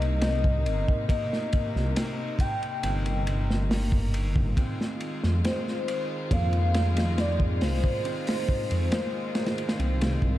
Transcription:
Already playing: detuned saw bass C2, string section C3 A#3 D#4, felt piano A#3 C4, soft synth lead D#5
0.02 ride
0.21 felt piano C4, snare, ride
0.44 kick
0.66 detuned saw bass G1, ride
0.88 kick
1.09 felt piano A#3, soft synth lead D#5, kick, ride
1.33 snare
1.53 kick, ride
1.76 detuned saw bass C2, snare
1.96 felt piano C4, snare, ride
2.39 soft synth lead G5, kick, ride
2.63 ride
2.83 detuned saw bass G1, felt piano C4, ride
3.06 ride
3.27 ride
3.50 snare
3.70 felt piano A#3, snare, open hi-hat
3.92 kick
4.14 ride
4.36 kick
4.57 string section D#3 G#3 F4, felt piano C4, kick, ride
4.81 snare
5.00 ride
5.23 detuned saw bass F2, snare
5.44 felt piano C4, soft synth lead C5, snare, ride
5.68 snare
5.88 ride
6.31 detuned saw bass F2, felt piano A#3, soft synth lead F5, kick, ride
6.53 ride
6.74 snare, ride
6.97 snare, ride
7.18 felt piano C4, soft synth lead D5, snare, ride
7.40 kick
7.61 detuned saw bass C2, soft synth lead C5, snare, open hi-hat
7.84 kick
8.05 felt piano C4, ride
8.27 snare, open hi-hat
8.49 kick
8.71 detuned saw bass F2, ride
8.91 felt piano A#3, snare, ride
9.35 snare, ride
9.46 snare, ride
9.58 ride
9.69 snare, ride
9.78 detuned saw bass C2, felt piano C4, ride
10.01 snare, ride
10.22 detuned saw bass C2, kick

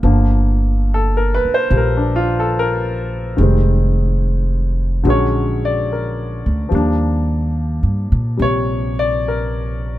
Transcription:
0.03 upright bass G1, grand piano D3 F3 A#3
0.94 grand piano A4
1.17 grand piano A#4
1.34 grand piano B4
1.45 muted upright bass stroke
1.54 grand piano C5
1.70 upright bass A#1, grand piano F3 G3
1.77 grand piano A#4
1.97 grand piano D4
2.16 grand piano F4
2.40 grand piano A4
2.59 grand piano A#4
3.37 upright bass F1, grand piano D#3 G3 G#3
3.43 grand piano C4
5.03 upright bass A#1, grand piano D3 F#3 G#3
5.08 grand piano C#4 C#5
5.65 grand piano D5
5.92 grand piano A#4
6.46 upright bass D2
6.69 upright bass D#2, grand piano F3 G3
6.73 grand piano A#3 D4
7.83 upright bass G2
8.12 upright bass A#2
8.37 upright bass A#1, grand piano C3 G3
8.42 grand piano C#5
8.99 grand piano D5
9.28 grand piano A#4

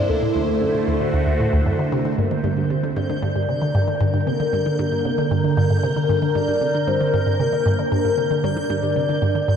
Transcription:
Already playing: analog synth pad D4 E4 C5
0.09 synth arpeggio sound D2, analog synth pad D3, soft synth lead A4
0.18 analog synth pad A3
0.23 synth arpeggio sound A2
0.35 synth arpeggio sound D2
0.48 synth arpeggio sound D2
0.61 synth arpeggio sound F#2
0.75 synth arpeggio sound A2, analog synth pad F#4
0.88 synth arpeggio sound D2
1.01 synth arpeggio sound A2
1.14 synth arpeggio sound D2
1.27 synth arpeggio sound D2
1.40 synth arpeggio sound A2
1.53 synth arpeggio sound D2
1.66 synth arpeggio sound F#2
1.79 synth arpeggio sound D3
1.92 synth arpeggio sound C3
2.05 synth arpeggio sound D3
2.18 synth arpeggio sound G2, analog synth pad D3, soft synth lead A#4, synth texture G6
2.31 synth arpeggio sound D3
2.44 synth arpeggio sound G2
2.57 synth arpeggio sound G2
2.70 synth arpeggio sound C3, soft synth lead C5
2.83 synth arpeggio sound D3
2.97 synth arpeggio sound G2
3.10 synth arpeggio sound D3
3.22 synth arpeggio sound G2, analog synth pad A#4, soft synth lead D5
3.35 synth arpeggio sound G2
3.49 synth arpeggio sound C3
3.62 synth arpeggio sound D3
3.75 synth arpeggio sound G2
3.88 synth arpeggio sound D3
4.01 synth arpeggio sound G2
4.14 synth arpeggio sound G2
4.27 synth arpeggio sound C3, soft synth lead A#4
4.40 synth arpeggio sound D3
4.53 synth arpeggio sound G2
4.66 synth arpeggio sound D3
4.79 synth arpeggio sound G2
4.92 synth arpeggio sound G2
5.05 synth arpeggio sound C3
5.18 synth arpeggio sound D3
5.31 synth arpeggio sound G2
5.44 synth arpeggio sound D3
5.57 synth arpeggio sound G2
5.70 synth arpeggio sound G2
5.83 synth arpeggio sound C3
5.96 synth arpeggio sound D3
6.09 synth arpeggio sound G2
6.22 synth arpeggio sound D3
6.35 synth arpeggio sound G2, soft synth lead D5
6.48 synth arpeggio sound G2
6.61 synth arpeggio sound C3
6.74 synth arpeggio sound D3
6.87 synth arpeggio sound G2, soft synth lead C5
7.00 synth arpeggio sound D3
7.14 synth arpeggio sound G2
7.27 synth arpeggio sound G2
7.39 synth arpeggio sound C3, soft synth lead A#4
7.53 synth arpeggio sound D3
7.66 synth arpeggio sound G2
7.79 synth arpeggio sound D3
7.92 synth arpeggio sound G2
8.05 synth arpeggio sound G2
8.18 synth arpeggio sound C3
8.31 synth arpeggio sound D3
8.44 synth arpeggio sound G2, soft synth lead D5
8.57 synth arpeggio sound D3
8.70 synth arpeggio sound G2
8.83 synth arpeggio sound G2
8.96 synth arpeggio sound C3
9.09 synth arpeggio sound D3
9.22 synth arpeggio sound G2
9.35 synth arpeggio sound D3
9.48 synth arpeggio sound G2

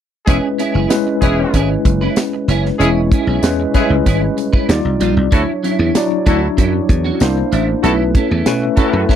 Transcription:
0.26 slap bass E1, tine electric piano G#3 C#4 E4 B4, horn section C#4 E4 G#4, clean electric guitar C#4 E4 G#4, kick, closed hi-hat
0.58 clean electric guitar C#4 E4 G#4, closed hi-hat
0.74 slap bass F#1, clean electric guitar C#4 E4 G#4
0.89 tine electric piano G#3 C#4 E4 B4, snare, closed hi-hat, tambourine
1.07 muted clean electric guitar stroke
1.21 slap bass E1, tine electric piano G#3 C#4 E4 B4, horn section C#4 E4 G#4, clean electric guitar C#4 E4 G#4, kick, closed hi-hat
1.38 muted clean electric guitar stroke
1.54 slap bass G#1, clean electric guitar C#4 E4 G#4, kick, closed hi-hat
1.70 muted clean electric guitar stroke
1.85 slap bass F#1, muted clean electric guitar stroke, kick, closed hi-hat
2.01 clean electric guitar C#4 E4 B4
2.16 snare, closed hi-hat, tambourine
2.33 muted clean electric guitar stroke
2.48 slap bass F#1, clean electric guitar C#4 E4 G#4, closed hi-hat
2.65 muted clean electric guitar stroke, snare
2.79 slap bass E1, tine electric piano G#3 C#4 E4 C#5, horn section C#4 E4 G#4, clean electric guitar C#4 E4 G#4, closed hi-hat
3.12 clean electric guitar C#4 E4 G#4, kick, closed hi-hat
3.27 slap bass B1, clean electric guitar C#4 E4 G#4
3.42 slap bass E2, tine electric piano G#3 C#4 E4 B4, snare, closed hi-hat, tambourine
3.60 muted clean electric guitar stroke
3.74 tine electric piano G3 C#4 E4 B4, horn section C#4 E4 G#4, clean electric guitar C#4 E4 G#4, kick, snare, closed hi-hat
3.80 tine electric piano G#3
3.90 slap bass C#2, muted clean electric guitar stroke
4.06 slap bass G#1, clean electric guitar C#4 E4 G#4, kick, closed hi-hat
4.22 muted clean electric guitar stroke
4.37 muted clean electric guitar stroke, closed hi-hat
4.53 clean electric guitar C#4 E4 B4, kick
4.69 slap bass D#2, tine electric piano G3 D#4 F4 D5, snare, closed hi-hat, tambourine
4.85 slap bass C2, muted clean electric guitar stroke
5.00 slap bass A#1, clean electric guitar G3 D4 F4, closed hi-hat
5.16 slap bass C2, muted clean electric guitar stroke
5.31 slap bass D2, clean electric guitar F#3 C#4 E4, tine electric piano F#3 D4 E4 C#5, horn section E4 F#4 A4, kick, closed hi-hat
5.63 clean electric guitar F#3 C#4 E4, closed hi-hat
5.79 slap bass E2, clean electric guitar F#3 C#4 E4
5.95 tine electric piano F#3 D4 E4 D5, snare, closed hi-hat, tambourine
6.11 muted clean electric guitar stroke
6.26 slap bass D2, clean electric guitar F#3 C#4 E4, tine electric piano F#3 D4 E4 C#5, horn section E4 F#4 A4, kick, closed hi-hat
6.42 muted clean electric guitar stroke
6.57 slap bass F#2, clean electric guitar F#3 C#4 E4, kick, closed hi-hat
6.73 muted clean electric guitar stroke
6.89 slap bass E2, muted clean electric guitar stroke, kick, closed hi-hat
7.04 clean electric guitar F#3 C#4 F#4
7.20 slap bass C2, tine electric piano A#3 D4 E4 C5, snare, closed hi-hat, tambourine
7.37 muted clean electric guitar stroke
7.52 slap bass A1, clean electric guitar A#3 D4 E4, closed hi-hat
7.68 muted clean electric guitar stroke
7.83 slap bass B1, tine electric piano A3 C#4 D#4 B4, clean electric guitar C#4 E4 A4, horn section E4 F#4 A4, closed hi-hat
7.90 tine electric piano E4
8.15 clean electric guitar C#4 E4 A4, kick, closed hi-hat
8.31 slap bass E2, clean electric guitar C#4 E4 A4
8.46 slap bass B2, tine electric piano A3 C#4 E4 B4, snare, closed hi-hat, tambourine
8.62 muted clean electric guitar stroke
8.76 tine electric piano A3 C#4 E4 B4, clean electric guitar C#4 E4 A4, horn section E4 F#4 A4, kick, closed hi-hat
8.93 slap bass F#2, muted clean electric guitar stroke
9.09 clean electric guitar C#4 E4 A4, kick, snare

